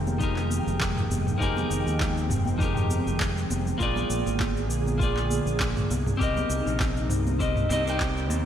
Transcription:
Already playing: F1 D#3 F3 G#3 A#3 D#4 G4 G#4 A#4 G5
0.07 high conga, cabasa
0.18 F3 D#4 G4 G#4, kick, cabasa
0.23 A#4
0.36 clap, cabasa
0.50 high conga, cabasa
0.67 F1, cabasa
0.81 kick, clap, cabasa
0.97 mid tom, cabasa
1.10 F1, high conga, cabasa
1.26 mid tom, low conga, cabasa
1.38 F1 F3 C4 D#4 G4 G#4, kick
1.42 A#4, cabasa
1.57 high conga, low conga, cabasa
1.70 F1, cabasa
1.87 D#2, cabasa
1.99 kick, clap, high conga, cabasa
2.17 cabasa
2.30 F1, mid tom, cabasa
2.45 high conga, cabasa
2.58 F3 D#4 G4 G#4, kick, cabasa
2.63 A#4
2.76 mid tom, cabasa
2.90 high conga, cabasa
3.07 F1, cabasa
3.20 kick, clap, cabasa
3.37 cabasa
3.50 F1, high conga, cabasa
3.65 low conga, cabasa
3.78 A#1 D3 A#3 F4 G#4, kick, cabasa
3.83 D5
3.96 high conga, low conga, cabasa
4.10 A#1, cabasa
4.26 G#1, cabasa
4.40 kick, clap, high conga, cabasa
4.57 cabasa
4.69 A#1, cabasa
4.86 high conga, cabasa
4.98 A#3 F4 G#4, kick, cabasa
5.03 D5
5.17 clap, cabasa
5.30 high conga, cabasa
5.46 A#1, cabasa
5.60 kick, clap, cabasa
5.76 mid tom, cabasa
5.90 C2 C3 D#4, high conga, cabasa
6.06 mid tom, low conga, cabasa
6.17 C2 C4 G4 A#4, kick, cabasa
6.23 D#5
6.37 high conga, low conga, cabasa
6.50 C2, cabasa
6.66 A#1, cabasa
6.80 kick, clap, high conga, cabasa
6.97 cabasa
7.10 C2, mid tom, cabasa
7.27 high conga, cabasa
7.39 C4 G4 A#4 D#5, kick, cabasa
7.56 mid tom, cabasa
7.69 C2 C4 G4 A#4 D#5, high conga, cabasa
7.84 C4 G4 A#4, cabasa
7.90 G5
8.00 kick, clap, cabasa
8.17 cabasa
8.29 D#2, high conga, cabasa

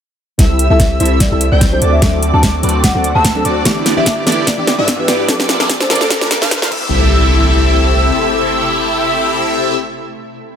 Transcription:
0.38 C2 C3 G3 A3 C4 E4 G4 A4 E5 E6, kick, snare, closed hi-hat, riser
0.59 closed hi-hat
0.69 C2 G3 C4 E4 G4 A4 E5 E6
0.80 kick, snare, closed hi-hat
0.99 C2 G3 C4 E4 G4 A4 C5 E5 E6, closed hi-hat
1.05 closed hi-hat
1.20 D5, kick, snare, closed hi-hat
1.30 C2 G3 C4 E4 G4 A4 E5 E6
1.41 closed hi-hat
1.52 C2 C4 E4 G4 A4 D5 G5 G6
1.61 kick, snare, closed hi-hat
1.71 F#3 C4 D4 A4 C5
1.82 D2 D3 C4 D4 F#4 A4 D5 D6, closed hi-hat
1.93 E5
2.01 D2 F#3 C4 D4 A4 D5 D6, kick, snare, closed hi-hat
2.23 closed hi-hat
2.32 D2 F#3 C4 D4 F#4 A4 D5 A5 D6
2.43 kick, snare, closed hi-hat
2.62 D2 F#3 C4 D4 F#4 A4 B4 D5 D6, closed hi-hat
2.69 closed hi-hat
2.84 F#5, kick, snare, closed hi-hat
2.94 D2 F#3 C4 D4 F#4 A4 D5 F#5 D6
3.04 closed hi-hat
3.15 D2 C4 D4 F#4 A4 E5 A5 E6
3.25 kick, snare, closed hi-hat
3.34 F#3 C4 D4 A4
3.45 D2 C4 D4 F#4 A4 D5 D6, closed hi-hat
3.65 G1 E3 G3 B3 D4 E4 G4 B4 D5 D6, kick, snare, closed hi-hat
3.86 snare, closed hi-hat
3.96 G1 E3 B3 D4 E4 G4 D5 E5 D6
4.06 kick, snare, closed hi-hat
4.25 G1 E3 B3 D4 E4 G4 A4 D5 D6, snare, closed hi-hat
4.32 closed hi-hat
4.47 D5, kick, snare, closed hi-hat
4.57 G1 E3 B3 D4 E4 G4 D5 D6
4.67 snare, closed hi-hat
4.78 G2 B3 D4 E4 G4 D5 E5 E6
4.88 kick, snare, closed hi-hat
4.98 E3 B3 D4 G4 B4
5.08 G2 B3 D4 E4 G4 D5 D6, snare, closed hi-hat
5.28 A#1 F3 A3 A#3 D4 A4 D5 D6, kick, snare, closed hi-hat
5.40 snare
5.49 snare, closed hi-hat
5.59 A#1 F3 A#3 D4 F4 A4 D5 D6, snare
5.69 kick, snare, closed hi-hat
5.80 C5, snare
5.89 A#1 F3 A#3 D4 F4 A4 A#4 D5 D6, snare, closed hi-hat
5.95 closed hi-hat
6.01 A4, snare
6.10 kick, snare, closed hi-hat
6.20 A#1 F3 A#3 D4 F4 A4 D5 D6, snare
6.30 F3 A#3 D4 A4, snare, closed hi-hat
6.42 A#1 A#3 D4 F4 A4 F5 F6, snare
6.51 kick, snare, closed hi-hat
6.61 F3 A#3 D4 A#4, snare
6.68 C2 C3 G3 A3 C4 E4 G4 A4 E5 E6, kick, crash, impact
6.72 E4 A4

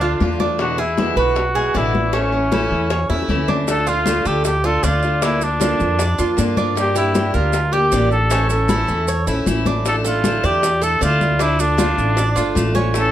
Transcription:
Already playing: D2 D4
0.01 A3 D4 F4, high conga
0.20 E2 D3 A3 D4 F4, high bongo, low bongo, high conga
0.40 A3 D4 F4, high bongo, high conga
0.59 B2 D3 G#3 B3 E4 F#4, high bongo, high conga
0.78 G#3 B3 E4 G#4, high bongo, high conga
0.97 B2 D3 G#3 B3 E4, high bongo, high conga
1.16 B1 F#4 B4, high bongo, high conga
1.36 muted steel-string acoustic guitar stroke, high bongo, high conga
1.55 G#3 B3 E4 G#4, high conga
1.74 A1 B2 D3 G#3 B3 E4 D5, high bongo, low bongo, high conga
1.93 G#3 B3 E4, high bongo, high conga
2.13 E3 A3 C#4 E4, high bongo
2.32 A3 C#4 E4, high bongo, high conga
2.51 E3 A3 C#4 E4, high bongo, high conga
2.70 E2, high bongo, high conga
2.90 C#5, muted steel-string acoustic guitar stroke, high bongo, high conga
3.09 E2 A3 C#4 E4, high bongo, high conga
3.22 high bongo
3.28 D2 E3 A3 C#4 E4, high conga
3.35 low bongo
3.48 A3 C#4 D4 E4, low bongo, high conga
3.67 D3 A3 D4 F4 A4, high bongo, high conga, maracas
3.86 A3 D4 F4, high bongo, high conga, maracas
4.06 D3 A3 D4 F4, high bongo, high conga, maracas
4.25 D2 G4 A4, high bongo, high conga, maracas
4.44 G4, muted steel-string acoustic guitar stroke, high bongo, high conga, maracas
4.64 A3 D4 F4 A4, high conga
4.83 D2 D3 A3 D4 F4 D5, high bongo, low bongo, high conga, maracas
5.03 A3 D4 F4, high bongo, maracas
5.22 D3 A#3 D4 E4 F4, high bongo, high conga, maracas
5.41 A#3 D4 F4, high bongo, high conga, maracas
5.60 D3 A#3 D4 F4, high bongo, high conga, maracas
5.80 F2, high bongo, high conga, maracas
5.99 D5, muted steel-string acoustic guitar stroke, high bongo, high conga, maracas
6.18 F2 A#3 D4 F4, high conga, maracas
6.37 G2 D3 A#3 D4 F4, high bongo, low bongo, high conga, maracas
6.56 A#3 D4 F4, high bongo, high conga, maracas
6.75 D3 G3 A#3 D4 G4, high bongo, high conga, maracas
6.95 A#3 D4 E4 G4, high bongo, high conga, maracas
7.14 D3 G3 A#3 D4 G4, high bongo, high conga, maracas
7.34 D2 F4 A#4, high bongo, high conga, maracas
7.53 muted steel-string acoustic guitar stroke, high bongo, high conga, maracas
7.72 A#3 D4 G4, high conga
7.92 A1 D3 G3 A#3 D4 G4 D5, high bongo, low bongo, high conga, maracas
8.11 A#3 D4 G4 A4, high bongo, maracas
8.30 E3 A3 C#4 E4, high bongo, high conga, maracas
8.49 A3 C#4 E4 A4, high bongo, high conga, maracas
8.69 E3 A3 C#4 E4, high bongo, high conga, maracas
8.88 E2, high bongo, high conga, maracas
9.08 C#5, muted steel-string acoustic guitar stroke, high conga, maracas
9.27 A#1 A3 C#4 E4, high conga, maracas
9.46 A1 E3 A3 C#4 E4, low bongo, high conga, maracas
9.66 A3 C#4 D4 E4, low bongo, high conga, maracas
9.85 D3 A3 D4 E4 A4, high bongo, high conga, maracas
10.04 A3 D4 E4 F4 A4, high bongo, high conga, maracas
10.24 D3 A3 D4 E4, high bongo, high conga, maracas
10.43 E2 G4 D5, high bongo, high conga, maracas
10.63 muted steel-string acoustic guitar stroke, high bongo, high conga, maracas
10.81 A3 D4 E4 A4, high conga, maracas
11.01 D2 D3 A3 D4 E4 F4 D5, high bongo, low bongo, high conga, maracas
11.20 A3 D4 E4, high bongo, high conga, maracas
11.39 D3 A3 D4 E4 F4, high bongo, high conga, maracas
11.59 A3 D4 F4, high bongo, high conga, maracas
11.77 D3 A3 D4 F4, high bongo, high conga, maracas
11.98 A1, high bongo, high conga, maracas
12.17 D5, muted steel-string acoustic guitar stroke, high bongo, high conga, maracas
12.36 G1 A3 D4 F4, high conga, maracas
12.55 A1 D3 A3 D4 F4, high bongo, low bongo, high conga, maracas
12.74 A3 C#4 D4 F4, high bongo, high conga, maracas
12.94 E3 A3 C#4 E4 A4, high bongo, high conga, maracas

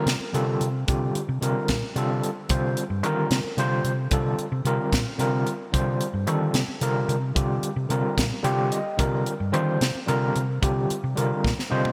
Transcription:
Already playing: D3 G3 C4 F4 A#4
0.06 C3, snare, closed hi-hat
0.33 C3 D3 G3 C4 F4 A4, closed hi-hat
0.61 C3, closed hi-hat
0.88 C3 D3 G3 C4 F4 G4, kick, closed hi-hat
1.15 muted fingered electric bass stroke, closed hi-hat
1.29 C3
1.41 C3 D3 G3 C4 F4 A#4, closed hi-hat
1.68 A#2, kick, snare, closed hi-hat
1.82 muted fingered electric bass stroke
1.96 C3 D3 G3 C4 F4 A4, closed hi-hat
2.23 closed hi-hat
2.49 C3 D3 G3 C4 F4 C5, kick, closed hi-hat
2.77 closed hi-hat
2.90 G2
3.03 D3 D#3 G3 C4 F4 A#4, closed hi-hat
3.30 C3, snare, closed hi-hat
3.44 muted fingered electric bass stroke
3.57 C3 D3 G3 C4 F4 C5, closed hi-hat
3.84 C3, closed hi-hat
4.11 C3 D3 G3 C4 F4 A4, kick, closed hi-hat
4.38 muted fingered electric bass stroke, closed hi-hat
4.52 C3
4.65 C3 D3 G3 C4 F4 A#4, closed hi-hat
4.92 A#2, kick, snare, closed hi-hat
5.05 muted fingered electric bass stroke
5.18 C3 D3 G3 C4 F4 A#4, closed hi-hat
5.47 closed hi-hat
5.72 C3 D3 G3 C4 F4 C5, kick, closed hi-hat
6.01 closed hi-hat
6.14 G2
6.26 D3 D#3 G3 C4 F4 A4, closed hi-hat
6.54 C3, snare, closed hi-hat
6.68 muted fingered electric bass stroke
6.81 C3 D3 G3 C4 F4 A#4, closed hi-hat
7.08 C3, closed hi-hat
7.35 C3 D3 G3 C4 F4 G4, kick, closed hi-hat
7.63 muted fingered electric bass stroke, closed hi-hat
7.76 C3
7.89 C3 D3 G3 C4 F4 A#4, closed hi-hat
8.18 A#2, kick, snare, closed hi-hat
8.31 muted fingered electric bass stroke
8.43 C3 D3 G3 C4 F4 G4 G5, closed hi-hat
8.72 D#5, closed hi-hat
8.98 C3 D3 G3 C4 F4 A#4, kick, closed hi-hat
9.26 closed hi-hat
9.40 G2
9.52 D3 D#3 G3 C4 F4 C5, closed hi-hat
9.81 C3, snare, closed hi-hat
9.95 muted fingered electric bass stroke
10.07 C3 D3 G3 C4 F4 A#4, closed hi-hat
10.36 C3, closed hi-hat
10.61 C3 D3 G3 C4 F4 G4, kick, closed hi-hat
10.90 muted fingered electric bass stroke, closed hi-hat
11.04 C3
11.16 C3 D3 G3 C4 F4 A#4, closed hi-hat
11.44 A#2, kick, snare
11.58 muted fingered electric bass stroke, snare
11.70 C3 D3 G3 C4 F4 C5 D#5
11.85 mid tom

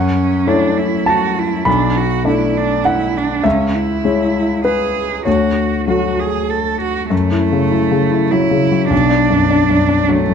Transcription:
Already playing: F#2 C#4 F#5
0.47 A3 D4 E4 C#5
0.78 E4
1.06 F#4 A5
1.39 E4
1.65 B1 D4 B5
1.97 F#4
2.24 A3 D4 E4 D5
2.58 D4
2.85 E4 F#5
3.17 D4
3.44 C#2 C#4 E5
3.75 E4
4.04 G#3 E4 C#5
4.65 G#4 B4
5.25 D2 F#4 C#5
5.87 F#3 A3 F#4
6.20 G#4
6.50 A4
6.81 F#4
7.10 F#2 A3
7.32 E4
7.52 C#3
7.71 E4
7.91 C#3
8.11 E4
8.32 F#3 E4
8.51 C#3
8.71 F#3
8.90 B1 D4
9.10 D4
9.30 F#2
9.51 D4
9.70 F#2
9.89 D4
10.09 F#3 A3
10.28 F#2

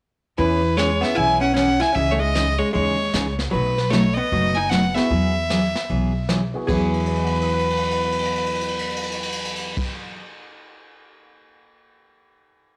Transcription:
0.38 E2 E3 B3 C#4 G#4 B4, brush sweep, kick
0.77 E3 G#3 B3 C#4 G#4 C#5, snare, hi-hat pedal
1.01 B3 C#4 E4 G#4 E5, snare
1.15 B1 E3 B3 C#4 E4 G#4 G#5, brush sweep, kick
1.41 C#4 F#5
1.54 E3 B3 C#4 G#4 F#5, snare, hi-hat pedal
1.80 E4 G#5, snare
1.93 C#2 C#3 C#4 D#4 E4 G#4 E5, brush sweep, kick
1.97 E3 D#4 G#4
2.12 A3 C#5
2.19 G#3 D#5
2.35 C#3 E3 D#4 G#4, snare, hi-hat pedal
2.58 G#3 C#5
2.72 D#2 C#3 E3 G#3 D#4 G#4 C#5, brush sweep, kick
3.13 C#2 C#3 E3 D#4 G#4, snare, hi-hat pedal
3.39 snare
3.51 B1 B2 F#3 A3 D#4 F#4 B4, brush sweep, kick
3.78 snare
3.90 B2 F#3 A3 D#4 F#4 C#5, snare, hi-hat pedal
4.14 B3 D#5
4.32 F#1 B2 F#3 A3 D#4 F#4, brush sweep, kick
4.55 D#4 G#5
4.70 B2 F#3 A3 B3 D#4 F#4 F#5, snare, hi-hat pedal
4.95 B3 E4 F#4 G#4 E5, snare
5.10 E2 E3 F#3 B3 E4 G#4, brush sweep, kick
5.50 E3 F#3 B3 E4 G#4, snare, hi-hat pedal
5.76 snare
5.89 B1 E3 F#3 B3 E4 G#4, brush sweep, kick
6.29 E3 F#3 B3 E4 G#4, snare, hi-hat pedal
6.54 B3 E4 F#4 G#4
6.67 E2 E3 F#3 B3 E4 F#4 G#4 B4, kick, crash
6.94 crash
7.00 ride
7.06 B4, crash
7.15 D#5, ride
7.24 F#5, crash
7.33 B5, ride
7.41 D#6, crash
7.48 ride
7.53 F#6
7.59 crash
7.65 B6
7.70 ride
7.77 crash
7.83 ride
7.91 crash
8.02 ride
8.12 crash
8.19 ride
8.25 crash
8.36 ride
8.46 crash
8.55 ride
8.61 crash
8.68 ride
8.79 crash
8.90 ride
8.96 crash
9.03 ride
9.12 crash
9.23 ride
9.32 crash
9.39 ride
9.45 crash
9.56 ride
9.77 kick, crash

